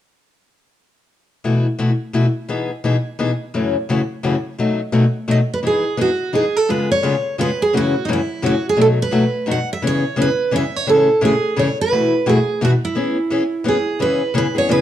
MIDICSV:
0, 0, Header, 1, 3, 480
1, 0, Start_track
1, 0, Key_signature, 4, "major"
1, 0, Tempo, 348635
1, 1994, Time_signature, 3, 2, 24, 8
1, 20393, End_track
2, 0, Start_track
2, 0, Title_t, "Steel-string acoustic guitar"
2, 0, Program_c, 0, 25
2, 7311, Note_on_c, 0, 75, 65
2, 7385, Note_off_c, 0, 75, 0
2, 7622, Note_on_c, 0, 71, 64
2, 7690, Note_off_c, 0, 71, 0
2, 7801, Note_on_c, 0, 68, 65
2, 8225, Note_off_c, 0, 68, 0
2, 8279, Note_on_c, 0, 66, 61
2, 8741, Note_off_c, 0, 66, 0
2, 8746, Note_on_c, 0, 68, 68
2, 9038, Note_off_c, 0, 68, 0
2, 9038, Note_on_c, 0, 69, 66
2, 9210, Note_off_c, 0, 69, 0
2, 9226, Note_on_c, 0, 71, 74
2, 9481, Note_off_c, 0, 71, 0
2, 9521, Note_on_c, 0, 73, 76
2, 10126, Note_off_c, 0, 73, 0
2, 10199, Note_on_c, 0, 71, 77
2, 10476, Note_off_c, 0, 71, 0
2, 10493, Note_on_c, 0, 68, 74
2, 10647, Note_off_c, 0, 68, 0
2, 10700, Note_on_c, 0, 66, 75
2, 11072, Note_off_c, 0, 66, 0
2, 11084, Note_on_c, 0, 63, 51
2, 11138, Note_off_c, 0, 63, 0
2, 11194, Note_on_c, 0, 64, 64
2, 11649, Note_off_c, 0, 64, 0
2, 11650, Note_on_c, 0, 66, 71
2, 11923, Note_off_c, 0, 66, 0
2, 11968, Note_on_c, 0, 68, 71
2, 12122, Note_off_c, 0, 68, 0
2, 12136, Note_on_c, 0, 69, 79
2, 12207, Note_off_c, 0, 69, 0
2, 12422, Note_on_c, 0, 71, 80
2, 13084, Note_off_c, 0, 71, 0
2, 13098, Note_on_c, 0, 78, 83
2, 13341, Note_off_c, 0, 78, 0
2, 13393, Note_on_c, 0, 76, 79
2, 13539, Note_off_c, 0, 76, 0
2, 13591, Note_on_c, 0, 73, 82
2, 14005, Note_off_c, 0, 73, 0
2, 14064, Note_on_c, 0, 71, 73
2, 14481, Note_off_c, 0, 71, 0
2, 14535, Note_on_c, 0, 76, 80
2, 14820, Note_off_c, 0, 76, 0
2, 14820, Note_on_c, 0, 73, 80
2, 14990, Note_off_c, 0, 73, 0
2, 14999, Note_on_c, 0, 69, 72
2, 15428, Note_off_c, 0, 69, 0
2, 15489, Note_on_c, 0, 68, 68
2, 15959, Note_off_c, 0, 68, 0
2, 15961, Note_on_c, 0, 73, 71
2, 16213, Note_off_c, 0, 73, 0
2, 16265, Note_on_c, 0, 71, 79
2, 16926, Note_off_c, 0, 71, 0
2, 16926, Note_on_c, 0, 68, 66
2, 17351, Note_off_c, 0, 68, 0
2, 17412, Note_on_c, 0, 66, 69
2, 17483, Note_off_c, 0, 66, 0
2, 17687, Note_on_c, 0, 64, 62
2, 18841, Note_on_c, 0, 68, 60
2, 19051, Note_off_c, 0, 64, 0
2, 19266, Note_off_c, 0, 68, 0
2, 19305, Note_on_c, 0, 71, 72
2, 19736, Note_off_c, 0, 71, 0
2, 19797, Note_on_c, 0, 71, 74
2, 20046, Note_off_c, 0, 71, 0
2, 20076, Note_on_c, 0, 73, 80
2, 20236, Note_off_c, 0, 73, 0
2, 20258, Note_on_c, 0, 71, 77
2, 20393, Note_off_c, 0, 71, 0
2, 20393, End_track
3, 0, Start_track
3, 0, Title_t, "Steel-string acoustic guitar"
3, 0, Program_c, 1, 25
3, 1985, Note_on_c, 1, 47, 52
3, 1990, Note_on_c, 1, 57, 54
3, 1994, Note_on_c, 1, 52, 56
3, 2001, Note_on_c, 1, 64, 59
3, 2003, Note_on_c, 1, 66, 63
3, 2275, Note_off_c, 1, 47, 0
3, 2277, Note_off_c, 1, 57, 0
3, 2279, Note_off_c, 1, 52, 0
3, 2283, Note_off_c, 1, 64, 0
3, 2284, Note_off_c, 1, 66, 0
3, 2458, Note_on_c, 1, 52, 61
3, 2460, Note_on_c, 1, 47, 69
3, 2466, Note_on_c, 1, 57, 71
3, 2473, Note_on_c, 1, 64, 68
3, 2476, Note_on_c, 1, 66, 71
3, 2617, Note_off_c, 1, 52, 0
3, 2618, Note_off_c, 1, 47, 0
3, 2621, Note_off_c, 1, 57, 0
3, 2624, Note_off_c, 1, 64, 0
3, 2626, Note_off_c, 1, 66, 0
3, 2938, Note_on_c, 1, 47, 69
3, 2944, Note_on_c, 1, 52, 70
3, 2948, Note_on_c, 1, 57, 71
3, 2954, Note_on_c, 1, 64, 70
3, 2956, Note_on_c, 1, 66, 78
3, 3097, Note_off_c, 1, 47, 0
3, 3100, Note_off_c, 1, 52, 0
3, 3102, Note_off_c, 1, 57, 0
3, 3105, Note_off_c, 1, 64, 0
3, 3106, Note_off_c, 1, 66, 0
3, 3421, Note_on_c, 1, 47, 57
3, 3425, Note_on_c, 1, 52, 61
3, 3433, Note_on_c, 1, 59, 64
3, 3436, Note_on_c, 1, 68, 59
3, 3441, Note_on_c, 1, 63, 61
3, 3713, Note_off_c, 1, 47, 0
3, 3715, Note_off_c, 1, 52, 0
3, 3719, Note_off_c, 1, 59, 0
3, 3720, Note_off_c, 1, 68, 0
3, 3723, Note_off_c, 1, 63, 0
3, 3909, Note_on_c, 1, 47, 70
3, 3911, Note_on_c, 1, 52, 69
3, 3917, Note_on_c, 1, 59, 75
3, 3922, Note_on_c, 1, 63, 71
3, 3929, Note_on_c, 1, 68, 75
3, 4062, Note_off_c, 1, 47, 0
3, 4063, Note_off_c, 1, 52, 0
3, 4067, Note_off_c, 1, 59, 0
3, 4069, Note_off_c, 1, 63, 0
3, 4073, Note_off_c, 1, 68, 0
3, 4389, Note_on_c, 1, 52, 70
3, 4390, Note_on_c, 1, 47, 73
3, 4396, Note_on_c, 1, 59, 72
3, 4399, Note_on_c, 1, 63, 66
3, 4407, Note_on_c, 1, 68, 80
3, 4543, Note_off_c, 1, 47, 0
3, 4543, Note_off_c, 1, 52, 0
3, 4546, Note_off_c, 1, 59, 0
3, 4548, Note_off_c, 1, 63, 0
3, 4551, Note_off_c, 1, 68, 0
3, 4873, Note_on_c, 1, 49, 57
3, 4874, Note_on_c, 1, 42, 60
3, 4880, Note_on_c, 1, 52, 60
3, 4881, Note_on_c, 1, 57, 56
3, 4884, Note_on_c, 1, 61, 60
3, 4891, Note_on_c, 1, 66, 61
3, 5158, Note_off_c, 1, 49, 0
3, 5159, Note_off_c, 1, 42, 0
3, 5162, Note_off_c, 1, 52, 0
3, 5163, Note_off_c, 1, 57, 0
3, 5164, Note_off_c, 1, 61, 0
3, 5168, Note_off_c, 1, 66, 0
3, 5355, Note_on_c, 1, 42, 72
3, 5363, Note_on_c, 1, 49, 73
3, 5365, Note_on_c, 1, 52, 73
3, 5369, Note_on_c, 1, 57, 81
3, 5371, Note_on_c, 1, 61, 79
3, 5377, Note_on_c, 1, 66, 77
3, 5505, Note_off_c, 1, 42, 0
3, 5509, Note_off_c, 1, 49, 0
3, 5510, Note_off_c, 1, 52, 0
3, 5512, Note_off_c, 1, 57, 0
3, 5513, Note_off_c, 1, 61, 0
3, 5516, Note_off_c, 1, 66, 0
3, 5827, Note_on_c, 1, 42, 74
3, 5829, Note_on_c, 1, 52, 72
3, 5835, Note_on_c, 1, 49, 74
3, 5840, Note_on_c, 1, 57, 72
3, 5843, Note_on_c, 1, 61, 74
3, 5845, Note_on_c, 1, 66, 76
3, 5981, Note_off_c, 1, 42, 0
3, 5982, Note_off_c, 1, 52, 0
3, 5985, Note_off_c, 1, 49, 0
3, 5988, Note_off_c, 1, 57, 0
3, 5989, Note_off_c, 1, 61, 0
3, 5990, Note_off_c, 1, 66, 0
3, 6312, Note_on_c, 1, 47, 56
3, 6317, Note_on_c, 1, 54, 58
3, 6327, Note_on_c, 1, 57, 60
3, 6327, Note_on_c, 1, 66, 60
3, 6328, Note_on_c, 1, 63, 65
3, 6598, Note_off_c, 1, 47, 0
3, 6600, Note_off_c, 1, 54, 0
3, 6605, Note_off_c, 1, 57, 0
3, 6605, Note_off_c, 1, 66, 0
3, 6606, Note_off_c, 1, 63, 0
3, 6778, Note_on_c, 1, 47, 77
3, 6778, Note_on_c, 1, 54, 67
3, 6783, Note_on_c, 1, 57, 76
3, 6793, Note_on_c, 1, 63, 80
3, 6796, Note_on_c, 1, 66, 73
3, 6936, Note_off_c, 1, 47, 0
3, 6937, Note_off_c, 1, 54, 0
3, 6939, Note_off_c, 1, 57, 0
3, 6944, Note_off_c, 1, 63, 0
3, 6945, Note_off_c, 1, 66, 0
3, 7265, Note_on_c, 1, 54, 65
3, 7266, Note_on_c, 1, 47, 63
3, 7270, Note_on_c, 1, 57, 75
3, 7277, Note_on_c, 1, 66, 74
3, 7279, Note_on_c, 1, 63, 69
3, 7420, Note_off_c, 1, 47, 0
3, 7420, Note_off_c, 1, 54, 0
3, 7423, Note_off_c, 1, 57, 0
3, 7426, Note_off_c, 1, 66, 0
3, 7427, Note_off_c, 1, 63, 0
3, 7747, Note_on_c, 1, 52, 58
3, 7753, Note_on_c, 1, 59, 54
3, 7758, Note_on_c, 1, 63, 58
3, 7769, Note_on_c, 1, 68, 59
3, 8035, Note_off_c, 1, 52, 0
3, 8038, Note_off_c, 1, 59, 0
3, 8041, Note_off_c, 1, 63, 0
3, 8046, Note_off_c, 1, 68, 0
3, 8225, Note_on_c, 1, 52, 69
3, 8225, Note_on_c, 1, 59, 75
3, 8235, Note_on_c, 1, 63, 84
3, 8241, Note_on_c, 1, 68, 74
3, 8380, Note_off_c, 1, 52, 0
3, 8380, Note_off_c, 1, 59, 0
3, 8385, Note_off_c, 1, 63, 0
3, 8388, Note_off_c, 1, 68, 0
3, 8713, Note_on_c, 1, 52, 65
3, 8722, Note_on_c, 1, 63, 82
3, 8723, Note_on_c, 1, 59, 70
3, 8731, Note_on_c, 1, 68, 77
3, 8864, Note_off_c, 1, 52, 0
3, 8869, Note_off_c, 1, 59, 0
3, 8869, Note_off_c, 1, 63, 0
3, 8873, Note_off_c, 1, 68, 0
3, 9205, Note_on_c, 1, 49, 55
3, 9211, Note_on_c, 1, 56, 59
3, 9211, Note_on_c, 1, 59, 61
3, 9215, Note_on_c, 1, 65, 68
3, 9220, Note_on_c, 1, 68, 64
3, 9485, Note_off_c, 1, 49, 0
3, 9488, Note_off_c, 1, 56, 0
3, 9488, Note_off_c, 1, 59, 0
3, 9490, Note_off_c, 1, 65, 0
3, 9492, Note_off_c, 1, 68, 0
3, 9676, Note_on_c, 1, 49, 78
3, 9683, Note_on_c, 1, 56, 75
3, 9684, Note_on_c, 1, 59, 79
3, 9695, Note_on_c, 1, 65, 84
3, 9696, Note_on_c, 1, 68, 75
3, 9826, Note_off_c, 1, 49, 0
3, 9830, Note_off_c, 1, 56, 0
3, 9830, Note_off_c, 1, 59, 0
3, 9835, Note_off_c, 1, 65, 0
3, 9836, Note_off_c, 1, 68, 0
3, 10165, Note_on_c, 1, 49, 73
3, 10169, Note_on_c, 1, 56, 74
3, 10173, Note_on_c, 1, 59, 82
3, 10180, Note_on_c, 1, 65, 78
3, 10181, Note_on_c, 1, 68, 79
3, 10311, Note_off_c, 1, 49, 0
3, 10313, Note_off_c, 1, 56, 0
3, 10315, Note_off_c, 1, 59, 0
3, 10318, Note_off_c, 1, 65, 0
3, 10319, Note_off_c, 1, 68, 0
3, 10645, Note_on_c, 1, 42, 59
3, 10650, Note_on_c, 1, 49, 66
3, 10657, Note_on_c, 1, 57, 59
3, 10659, Note_on_c, 1, 52, 69
3, 10660, Note_on_c, 1, 61, 66
3, 10665, Note_on_c, 1, 66, 65
3, 10925, Note_off_c, 1, 42, 0
3, 10928, Note_off_c, 1, 49, 0
3, 10932, Note_off_c, 1, 57, 0
3, 10933, Note_off_c, 1, 52, 0
3, 10933, Note_off_c, 1, 61, 0
3, 10936, Note_off_c, 1, 66, 0
3, 11129, Note_on_c, 1, 42, 70
3, 11134, Note_on_c, 1, 52, 82
3, 11135, Note_on_c, 1, 49, 80
3, 11140, Note_on_c, 1, 57, 77
3, 11142, Note_on_c, 1, 61, 77
3, 11146, Note_on_c, 1, 66, 84
3, 11273, Note_off_c, 1, 42, 0
3, 11276, Note_off_c, 1, 49, 0
3, 11276, Note_off_c, 1, 52, 0
3, 11279, Note_off_c, 1, 57, 0
3, 11280, Note_off_c, 1, 61, 0
3, 11282, Note_off_c, 1, 66, 0
3, 11597, Note_on_c, 1, 42, 71
3, 11603, Note_on_c, 1, 49, 72
3, 11605, Note_on_c, 1, 52, 76
3, 11608, Note_on_c, 1, 57, 75
3, 11613, Note_on_c, 1, 61, 76
3, 11619, Note_on_c, 1, 66, 82
3, 11748, Note_off_c, 1, 42, 0
3, 11751, Note_off_c, 1, 49, 0
3, 11752, Note_off_c, 1, 52, 0
3, 11753, Note_off_c, 1, 57, 0
3, 11756, Note_off_c, 1, 61, 0
3, 11759, Note_off_c, 1, 66, 0
3, 12068, Note_on_c, 1, 47, 55
3, 12074, Note_on_c, 1, 54, 63
3, 12077, Note_on_c, 1, 57, 60
3, 12081, Note_on_c, 1, 63, 62
3, 12092, Note_on_c, 1, 66, 68
3, 12358, Note_off_c, 1, 47, 0
3, 12361, Note_off_c, 1, 54, 0
3, 12363, Note_off_c, 1, 57, 0
3, 12365, Note_off_c, 1, 63, 0
3, 12370, Note_off_c, 1, 66, 0
3, 12546, Note_on_c, 1, 47, 72
3, 12556, Note_on_c, 1, 54, 73
3, 12563, Note_on_c, 1, 66, 77
3, 12564, Note_on_c, 1, 57, 80
3, 12566, Note_on_c, 1, 63, 78
3, 12703, Note_off_c, 1, 47, 0
3, 12708, Note_off_c, 1, 54, 0
3, 12712, Note_off_c, 1, 57, 0
3, 12712, Note_off_c, 1, 66, 0
3, 12713, Note_off_c, 1, 63, 0
3, 13025, Note_on_c, 1, 47, 71
3, 13035, Note_on_c, 1, 54, 68
3, 13042, Note_on_c, 1, 57, 68
3, 13043, Note_on_c, 1, 63, 69
3, 13048, Note_on_c, 1, 66, 77
3, 13183, Note_off_c, 1, 47, 0
3, 13188, Note_off_c, 1, 54, 0
3, 13192, Note_off_c, 1, 57, 0
3, 13192, Note_off_c, 1, 63, 0
3, 13195, Note_off_c, 1, 66, 0
3, 13522, Note_on_c, 1, 52, 59
3, 13525, Note_on_c, 1, 49, 61
3, 13534, Note_on_c, 1, 59, 60
3, 13538, Note_on_c, 1, 61, 62
3, 13539, Note_on_c, 1, 68, 68
3, 13806, Note_off_c, 1, 52, 0
3, 13808, Note_off_c, 1, 49, 0
3, 13812, Note_off_c, 1, 59, 0
3, 13815, Note_off_c, 1, 61, 0
3, 13815, Note_off_c, 1, 68, 0
3, 13990, Note_on_c, 1, 49, 78
3, 13999, Note_on_c, 1, 52, 69
3, 14004, Note_on_c, 1, 59, 70
3, 14010, Note_on_c, 1, 61, 81
3, 14014, Note_on_c, 1, 68, 75
3, 14146, Note_off_c, 1, 49, 0
3, 14150, Note_off_c, 1, 52, 0
3, 14153, Note_off_c, 1, 59, 0
3, 14156, Note_off_c, 1, 61, 0
3, 14158, Note_off_c, 1, 68, 0
3, 14474, Note_on_c, 1, 49, 73
3, 14484, Note_on_c, 1, 52, 78
3, 14490, Note_on_c, 1, 59, 78
3, 14490, Note_on_c, 1, 61, 78
3, 14495, Note_on_c, 1, 68, 77
3, 14628, Note_off_c, 1, 49, 0
3, 14633, Note_off_c, 1, 52, 0
3, 14636, Note_off_c, 1, 61, 0
3, 14637, Note_off_c, 1, 59, 0
3, 14639, Note_off_c, 1, 68, 0
3, 14960, Note_on_c, 1, 45, 57
3, 14961, Note_on_c, 1, 49, 61
3, 14965, Note_on_c, 1, 52, 66
3, 14970, Note_on_c, 1, 57, 62
3, 14971, Note_on_c, 1, 61, 68
3, 14980, Note_on_c, 1, 68, 68
3, 15246, Note_off_c, 1, 45, 0
3, 15247, Note_off_c, 1, 49, 0
3, 15248, Note_off_c, 1, 52, 0
3, 15251, Note_off_c, 1, 57, 0
3, 15251, Note_off_c, 1, 61, 0
3, 15256, Note_off_c, 1, 68, 0
3, 15435, Note_on_c, 1, 45, 76
3, 15440, Note_on_c, 1, 49, 83
3, 15445, Note_on_c, 1, 52, 75
3, 15450, Note_on_c, 1, 61, 77
3, 15452, Note_on_c, 1, 57, 74
3, 15459, Note_on_c, 1, 68, 83
3, 15589, Note_off_c, 1, 45, 0
3, 15592, Note_off_c, 1, 49, 0
3, 15594, Note_off_c, 1, 52, 0
3, 15597, Note_off_c, 1, 57, 0
3, 15597, Note_off_c, 1, 61, 0
3, 15601, Note_off_c, 1, 68, 0
3, 15921, Note_on_c, 1, 45, 74
3, 15926, Note_on_c, 1, 49, 78
3, 15931, Note_on_c, 1, 52, 71
3, 15931, Note_on_c, 1, 57, 75
3, 15938, Note_on_c, 1, 68, 75
3, 15940, Note_on_c, 1, 61, 71
3, 16072, Note_off_c, 1, 45, 0
3, 16074, Note_off_c, 1, 49, 0
3, 16077, Note_off_c, 1, 52, 0
3, 16077, Note_off_c, 1, 57, 0
3, 16081, Note_off_c, 1, 68, 0
3, 16082, Note_off_c, 1, 61, 0
3, 16409, Note_on_c, 1, 47, 54
3, 16415, Note_on_c, 1, 52, 62
3, 16417, Note_on_c, 1, 57, 58
3, 16428, Note_on_c, 1, 64, 69
3, 16431, Note_on_c, 1, 66, 62
3, 16690, Note_off_c, 1, 47, 0
3, 16693, Note_off_c, 1, 52, 0
3, 16694, Note_off_c, 1, 57, 0
3, 16700, Note_off_c, 1, 64, 0
3, 16701, Note_off_c, 1, 66, 0
3, 16881, Note_on_c, 1, 47, 81
3, 16883, Note_on_c, 1, 52, 84
3, 16890, Note_on_c, 1, 57, 81
3, 16892, Note_on_c, 1, 64, 80
3, 16895, Note_on_c, 1, 66, 90
3, 17032, Note_off_c, 1, 47, 0
3, 17033, Note_off_c, 1, 52, 0
3, 17037, Note_off_c, 1, 57, 0
3, 17037, Note_off_c, 1, 64, 0
3, 17039, Note_off_c, 1, 66, 0
3, 17364, Note_on_c, 1, 47, 77
3, 17370, Note_on_c, 1, 52, 78
3, 17375, Note_on_c, 1, 57, 81
3, 17380, Note_on_c, 1, 66, 79
3, 17381, Note_on_c, 1, 64, 76
3, 17513, Note_off_c, 1, 47, 0
3, 17516, Note_off_c, 1, 52, 0
3, 17519, Note_off_c, 1, 57, 0
3, 17521, Note_off_c, 1, 66, 0
3, 17522, Note_off_c, 1, 64, 0
3, 17830, Note_on_c, 1, 52, 63
3, 17840, Note_on_c, 1, 59, 61
3, 17846, Note_on_c, 1, 61, 62
3, 17851, Note_on_c, 1, 68, 63
3, 18120, Note_off_c, 1, 52, 0
3, 18125, Note_off_c, 1, 59, 0
3, 18128, Note_off_c, 1, 61, 0
3, 18131, Note_off_c, 1, 68, 0
3, 18317, Note_on_c, 1, 52, 68
3, 18323, Note_on_c, 1, 59, 79
3, 18333, Note_on_c, 1, 61, 77
3, 18337, Note_on_c, 1, 68, 79
3, 18469, Note_off_c, 1, 52, 0
3, 18472, Note_off_c, 1, 59, 0
3, 18477, Note_off_c, 1, 61, 0
3, 18479, Note_off_c, 1, 68, 0
3, 18782, Note_on_c, 1, 52, 77
3, 18797, Note_on_c, 1, 61, 72
3, 18798, Note_on_c, 1, 59, 78
3, 18805, Note_on_c, 1, 68, 76
3, 18941, Note_off_c, 1, 52, 0
3, 18948, Note_off_c, 1, 61, 0
3, 18949, Note_off_c, 1, 59, 0
3, 18952, Note_off_c, 1, 68, 0
3, 19265, Note_on_c, 1, 49, 60
3, 19274, Note_on_c, 1, 52, 68
3, 19277, Note_on_c, 1, 59, 64
3, 19280, Note_on_c, 1, 61, 67
3, 19285, Note_on_c, 1, 68, 75
3, 19555, Note_off_c, 1, 49, 0
3, 19559, Note_off_c, 1, 52, 0
3, 19561, Note_off_c, 1, 59, 0
3, 19562, Note_off_c, 1, 61, 0
3, 19565, Note_off_c, 1, 68, 0
3, 19742, Note_on_c, 1, 49, 80
3, 19752, Note_on_c, 1, 52, 82
3, 19754, Note_on_c, 1, 59, 92
3, 19759, Note_on_c, 1, 68, 89
3, 19760, Note_on_c, 1, 61, 82
3, 19899, Note_off_c, 1, 49, 0
3, 19904, Note_off_c, 1, 52, 0
3, 19905, Note_off_c, 1, 59, 0
3, 19907, Note_off_c, 1, 61, 0
3, 19907, Note_off_c, 1, 68, 0
3, 20029, Note_on_c, 1, 68, 58
3, 20042, Note_on_c, 1, 61, 51
3, 20056, Note_on_c, 1, 59, 44
3, 20217, Note_off_c, 1, 68, 0
3, 20219, Note_off_c, 1, 59, 0
3, 20219, Note_off_c, 1, 61, 0
3, 20227, Note_on_c, 1, 52, 90
3, 20228, Note_on_c, 1, 49, 72
3, 20236, Note_on_c, 1, 59, 84
3, 20236, Note_on_c, 1, 61, 74
3, 20244, Note_on_c, 1, 68, 86
3, 20380, Note_off_c, 1, 52, 0
3, 20381, Note_off_c, 1, 49, 0
3, 20384, Note_off_c, 1, 59, 0
3, 20384, Note_off_c, 1, 61, 0
3, 20388, Note_off_c, 1, 68, 0
3, 20393, End_track
0, 0, End_of_file